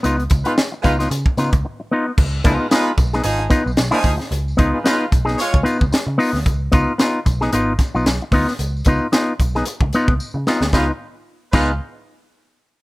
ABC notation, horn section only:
X:1
M:4/4
L:1/16
Q:"Swing 16ths" 1/4=112
K:Dbmix
V:1 name="Horn section"
z3 [A,Fc] z2 [A,Fc] z8 z | z2 [F,EA] [A,Fc] [A,Fc]2 z2 [F,EA]2 z3 [F,EA]2 z | z2 [F,EA] [A,Fc] [A,Fc]2 z2 [A,Fd]2 z6 | z16 |
z16 | [A,Fc] z4 z [A,Fc]2 z8 |]